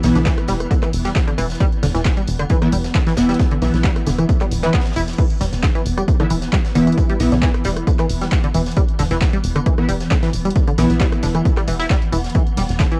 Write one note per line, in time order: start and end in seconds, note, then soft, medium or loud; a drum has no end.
0.00 0.13 B1 loud
0.00 5.17 E3 medium
0.00 2.59 E3 medium
0.00 5.17 B3 medium
0.00 2.59 B3 medium
0.00 2.59 E4 medium
0.00 closed hi-hat medium
0.00 open hi-hat loud
0.00 tambourine medium
0.04 snare medium
0.15 0.33 B1 medium
0.15 0.18 D3 medium
0.15 snare soft
0.15 closed hi-hat medium
0.15 tambourine soft
0.25 0.33 E3 medium
0.25 kick loud
0.25 snare loud
0.25 clap loud
0.25 closed hi-hat medium
0.25 tambourine soft
0.38 cross-stick medium
0.38 closed hi-hat medium
0.38 tambourine soft
0.48 0.67 E1 loud
0.48 0.53 G3 medium
0.48 snare medium
0.48 closed hi-hat medium
0.48 open hi-hat medium
0.48 tambourine medium
0.60 cross-stick medium
0.60 closed hi-hat soft
0.60 tambourine soft
0.71 0.74 D3 medium
0.71 kick loud
0.71 closed hi-hat medium
0.71 tambourine soft
0.83 0.89 E3 medium
0.83 cross-stick loud
0.83 clap soft
0.83 closed hi-hat soft
0.83 tambourine soft
0.93 1.12 E1 loud
0.93 closed hi-hat medium
0.93 open hi-hat loud
0.93 tambourine medium
1.05 1.09 G3 medium
1.05 snare soft
1.05 closed hi-hat medium
1.05 tambourine soft
1.15 kick loud
1.15 snare loud
1.15 clap loud
1.15 closed hi-hat medium
1.15 tambourine soft
1.27 1.30 D3 medium
1.27 closed hi-hat medium
1.27 tambourine soft
1.38 1.56 E1 loud
1.38 1.45 E3 medium
1.38 open hi-hat medium
1.38 tambourine medium
1.50 snare soft
1.50 closed hi-hat soft
1.50 tambourine soft
1.55 closed hi-hat medium
1.60 1.65 G3 medium
1.60 kick loud
1.60 closed hi-hat medium
1.60 closed hi-hat loud
1.60 tambourine soft
1.72 closed hi-hat medium
1.72 tambourine soft
1.83 1.92 E1 loud
1.83 1.86 D3 medium
1.83 snare medium
1.83 closed hi-hat medium
1.83 open hi-hat loud
1.83 tambourine medium
1.95 2.12 E1 medium
1.95 2.01 E3 medium
1.95 snare soft
1.95 closed hi-hat medium
1.95 tambourine soft
2.05 kick loud
2.05 snare loud
2.05 clap loud
2.05 closed hi-hat medium
2.05 closed hi-hat loud
2.05 tambourine soft
2.17 2.21 G3 medium
2.17 closed hi-hat medium
2.17 tambourine soft
2.27 2.46 E1 loud
2.27 closed hi-hat medium
2.27 open hi-hat medium
2.27 tambourine medium
2.39 2.42 D3 medium
2.39 cross-stick medium
2.39 closed hi-hat medium
2.39 tambourine soft
2.50 2.57 E3 medium
2.50 kick loud
2.50 closed hi-hat medium
2.50 tambourine soft
2.62 2.68 E3 loud
2.62 2.68 B3 medium
2.62 2.68 E4 loud
2.62 cross-stick medium
2.62 closed hi-hat medium
2.62 tambourine soft
2.72 2.91 E1 medium
2.72 2.77 G3 medium
2.72 closed hi-hat medium
2.72 open hi-hat loud
2.72 tambourine medium
2.84 snare soft
2.84 closed hi-hat medium
2.84 tambourine soft
2.95 2.98 D3 medium
2.95 kick loud
2.95 snare loud
2.95 clap loud
2.95 closed hi-hat medium
2.95 tambourine soft
3.07 3.13 E3 medium
3.07 snare medium
3.07 closed hi-hat medium
3.07 tambourine soft
3.17 3.35 E1 medium
3.17 3.59 E3 loud
3.17 3.59 B3 medium
3.17 3.59 E4 loud
3.17 snare loud
3.17 closed hi-hat medium
3.17 open hi-hat medium
3.17 tambourine medium
3.29 3.33 G3 medium
3.29 snare soft
3.29 closed hi-hat soft
3.29 tambourine soft
3.34 closed hi-hat medium
3.39 kick loud
3.39 snare loud
3.39 closed hi-hat medium
3.39 tambourine soft
3.51 3.54 D3 medium
3.51 closed hi-hat medium
3.51 tambourine soft
3.62 3.71 B1 loud
3.62 3.69 E3 medium
3.62 4.61 E3 medium
3.62 4.61 B3 medium
3.62 4.61 E4 medium
3.62 snare soft
3.62 closed hi-hat medium
3.62 open hi-hat loud
3.62 tambourine medium
3.74 3.92 B1 medium
3.74 snare soft
3.74 closed hi-hat medium
3.74 tambourine soft
3.84 3.89 G3 medium
3.84 kick loud
3.84 snare loud
3.84 clap loud
3.84 closed hi-hat medium
3.84 closed hi-hat loud
3.84 tambourine soft
3.96 cross-stick medium
3.96 closed hi-hat medium
3.96 tambourine soft
4.06 4.25 E1 loud
4.06 4.10 D3 medium
4.06 snare medium
4.06 closed hi-hat medium
4.06 open hi-hat medium
4.06 tambourine medium
4.18 4.25 E3 medium
4.18 cross-stick medium
4.18 closed hi-hat medium
4.18 tambourine soft
4.29 kick loud
4.29 closed hi-hat medium
4.29 tambourine soft
4.41 4.45 G3 medium
4.41 cross-stick medium
4.41 clap soft
4.41 closed hi-hat soft
4.41 closed hi-hat medium
4.41 tambourine soft
4.51 4.70 D1 loud
4.51 closed hi-hat medium
4.51 open hi-hat loud
4.51 tambourine medium
4.63 4.70 E3 loud
4.63 4.70 E3 medium
4.63 4.70 B3 medium
4.63 4.70 E4 medium
4.63 snare medium
4.63 closed hi-hat medium
4.63 tambourine soft
4.73 4.81 B3 medium
4.73 kick loud
4.73 snare medium
4.73 clap loud
4.73 closed hi-hat medium
4.73 tambourine soft
4.79 snare medium
4.79 closed hi-hat medium
4.85 snare medium
4.85 closed hi-hat medium
4.85 tambourine soft
4.91 snare medium
4.91 closed hi-hat medium
4.96 5.14 E1 medium
4.96 5.01 E4 medium
4.96 open hi-hat medium
4.96 tambourine medium
5.08 snare soft
5.08 closed hi-hat medium
5.08 tambourine soft
5.13 closed hi-hat medium
5.18 5.26 E3 medium
5.18 13.00 E3 medium
5.18 13.00 B3 medium
5.18 kick loud
5.18 closed hi-hat medium
5.18 crash medium
5.18 tambourine soft
5.30 closed hi-hat medium
5.30 tambourine soft
5.41 5.50 E1 loud
5.41 5.46 G3 medium
5.41 snare medium
5.41 closed hi-hat medium
5.41 open hi-hat loud
5.41 tambourine medium
5.53 5.71 E1 medium
5.53 snare soft
5.53 closed hi-hat medium
5.53 tambourine soft
5.63 5.66 D3 medium
5.63 kick loud
5.63 snare loud
5.63 clap loud
5.63 closed hi-hat medium
5.63 tambourine soft
5.75 5.82 E3 medium
5.75 closed hi-hat medium
5.75 tambourine soft
5.86 6.04 E1 loud
5.86 closed hi-hat medium
5.86 open hi-hat medium
5.86 tambourine medium
5.97 6.02 G3 medium
5.97 cross-stick medium
5.97 closed hi-hat medium
5.97 tambourine soft
6.08 kick loud
6.08 closed hi-hat medium
6.08 tambourine soft
6.20 6.23 D3 medium
6.20 6.26 E3 loud
6.20 6.26 B3 medium
6.20 6.26 E4 loud
6.20 cross-stick medium
6.20 closed hi-hat medium
6.20 tambourine soft
6.30 6.49 E1 medium
6.30 6.38 E3 medium
6.30 closed hi-hat medium
6.30 open hi-hat loud
6.30 tambourine medium
6.42 snare soft
6.42 closed hi-hat medium
6.42 tambourine soft
6.53 6.58 G3 medium
6.53 kick loud
6.53 snare loud
6.53 clap loud
6.53 closed hi-hat medium
6.53 tambourine soft
6.65 snare medium
6.65 closed hi-hat medium
6.65 tambourine soft
6.75 6.94 E1 medium
6.75 6.78 D3 medium
6.75 7.17 E3 loud
6.75 7.17 B3 loud
6.75 7.17 E4 loud
6.75 closed hi-hat medium
6.75 open hi-hat medium
6.75 tambourine medium
6.87 6.94 E3 medium
6.87 closed hi-hat medium
6.87 tambourine soft
6.92 closed hi-hat medium
6.98 kick loud
6.98 closed hi-hat medium
6.98 tambourine soft
7.09 7.14 G3 medium
7.09 closed hi-hat medium
7.09 tambourine soft
7.19 7.30 B1 loud
7.19 9.75 E3 medium
7.19 9.75 B3 medium
7.19 9.75 E4 medium
7.19 snare soft
7.19 closed hi-hat medium
7.19 open hi-hat loud
7.19 tambourine medium
7.32 7.50 B1 medium
7.32 7.35 D3 medium
7.32 snare soft
7.32 closed hi-hat medium
7.32 tambourine soft
7.42 7.50 E3 medium
7.42 kick loud
7.42 snare loud
7.42 clap loud
7.42 closed hi-hat medium
7.42 closed hi-hat loud
7.42 tambourine soft
7.54 cross-stick medium
7.54 closed hi-hat medium
7.54 tambourine soft
7.64 7.83 E1 loud
7.64 7.70 G3 medium
7.64 snare soft
7.64 closed hi-hat medium
7.64 open hi-hat loud
7.64 tambourine medium
7.77 cross-stick medium
7.77 closed hi-hat medium
7.77 tambourine soft
7.87 7.90 D3 medium
7.87 kick loud
7.87 closed hi-hat medium
7.87 tambourine soft
7.99 8.06 E3 medium
7.99 cross-stick medium
7.99 clap soft
7.99 closed hi-hat medium
7.99 closed hi-hat soft
7.99 tambourine soft
8.09 8.28 E1 medium
8.09 closed hi-hat medium
8.09 open hi-hat loud
8.09 tambourine medium
8.21 8.26 G3 medium
8.21 snare medium
8.21 closed hi-hat medium
8.21 tambourine soft
8.31 kick loud
8.31 snare loud
8.31 clap loud
8.31 closed hi-hat medium
8.31 tambourine soft
8.44 8.46 D3 medium
8.44 closed hi-hat medium
8.44 tambourine soft
8.54 8.73 E1 loud
8.54 8.62 E3 medium
8.54 open hi-hat loud
8.54 open hi-hat medium
8.54 tambourine medium
8.66 snare soft
8.66 closed hi-hat medium
8.66 tambourine soft
8.71 closed hi-hat medium
8.77 8.82 G3 medium
8.77 kick loud
8.77 closed hi-hat medium
8.77 tambourine soft
8.88 closed hi-hat medium
8.88 tambourine soft
8.99 9.09 E1 loud
8.99 9.02 D3 medium
8.99 snare soft
8.99 closed hi-hat medium
8.99 open hi-hat loud
8.99 tambourine medium
9.11 9.29 E1 medium
9.11 9.18 E3 medium
9.11 snare soft
9.11 closed hi-hat medium
9.11 tambourine soft
9.21 kick loud
9.21 snare loud
9.21 clap loud
9.21 closed hi-hat medium
9.21 tambourine soft
9.33 9.38 G3 medium
9.33 closed hi-hat medium
9.33 tambourine soft
9.44 9.62 E1 loud
9.44 closed hi-hat medium
9.44 open hi-hat loud
9.44 tambourine medium
9.56 9.58 D3 medium
9.56 cross-stick medium
9.56 closed hi-hat medium
9.56 tambourine soft
9.66 9.74 E3 medium
9.66 kick loud
9.66 closed hi-hat medium
9.66 tambourine soft
9.78 9.84 E3 loud
9.78 9.84 B3 medium
9.78 9.84 E4 loud
9.78 cross-stick medium
9.78 closed hi-hat medium
9.78 tambourine soft
9.89 10.07 E1 medium
9.89 9.94 G3 medium
9.89 closed hi-hat medium
9.89 open hi-hat loud
9.89 tambourine medium
10.00 snare soft
10.00 closed hi-hat medium
10.00 tambourine soft
10.11 10.14 D3 medium
10.11 kick loud
10.11 snare loud
10.11 clap loud
10.11 closed hi-hat medium
10.11 tambourine soft
10.23 10.29 E3 medium
10.23 snare medium
10.23 closed hi-hat medium
10.23 tambourine soft
10.33 10.52 E1 medium
10.33 closed hi-hat medium
10.33 open hi-hat loud
10.33 tambourine medium
10.45 10.50 G3 medium
10.45 closed hi-hat soft
10.45 tambourine soft
10.51 closed hi-hat medium
10.56 kick loud
10.56 closed hi-hat medium
10.56 tambourine soft
10.68 10.70 D3 medium
10.68 closed hi-hat medium
10.68 tambourine soft
10.78 10.88 B1 loud
10.78 10.86 E3 medium
10.78 11.77 E3 medium
10.78 11.77 B3 medium
10.78 11.77 E4 medium
10.78 snare soft
10.78 closed hi-hat medium
10.78 open hi-hat loud
10.78 tambourine medium
10.89 11.08 B1 medium
10.89 snare soft
10.89 closed hi-hat medium
10.89 tambourine soft
11.00 11.05 G3 medium
11.00 kick loud
11.00 snare loud
11.00 clap loud
11.00 closed hi-hat medium
11.00 tambourine soft
11.12 cross-stick medium
11.12 closed hi-hat medium
11.12 tambourine soft
11.23 11.41 E1 loud
11.23 11.26 D3 medium
11.23 snare medium
11.23 closed hi-hat medium
11.23 open hi-hat loud
11.23 tambourine medium
11.35 11.41 E3 medium
11.35 cross-stick medium
11.35 closed hi-hat medium
11.35 tambourine soft
11.45 kick loud
11.45 closed hi-hat medium
11.45 tambourine soft
11.57 11.62 G3 medium
11.57 cross-stick loud
11.57 clap soft
11.57 closed hi-hat medium
11.57 closed hi-hat soft
11.57 tambourine soft
11.68 11.86 E1 medium
11.68 11.75 E3 medium
11.68 closed hi-hat medium
11.68 open hi-hat loud
11.68 tambourine medium
11.80 11.86 E4 loud
11.80 snare medium
11.80 closed hi-hat medium
11.80 tambourine soft
11.90 11.95 G3 medium
11.90 kick loud
11.90 snare loud
11.90 clap loud
11.90 closed hi-hat medium
11.90 tambourine soft
12.02 closed hi-hat medium
12.02 tambourine soft
12.12 12.31 E1 loud
12.12 12.17 E3 medium
12.12 open hi-hat loud
12.12 open hi-hat medium
12.12 tambourine medium
12.24 snare soft
12.24 closed hi-hat soft
12.24 tambourine soft
12.30 closed hi-hat medium
12.35 12.42 E3 medium
12.35 kick loud
12.35 closed hi-hat medium
12.35 tambourine soft
12.47 closed hi-hat soft
12.47 tambourine soft
12.57 12.67 E1 loud
12.57 12.62 G3 medium
12.57 snare medium
12.57 closed hi-hat medium
12.57 open hi-hat loud
12.57 ride medium
12.57 tambourine medium
12.69 12.87 E1 medium
12.69 snare soft
12.69 closed hi-hat soft
12.69 tambourine soft
12.80 12.83 D3 medium
12.80 kick loud
12.80 snare loud
12.80 clap loud
12.80 closed hi-hat medium
12.80 tambourine soft
12.92 12.98 E3 medium
12.92 closed hi-hat medium
12.92 tambourine soft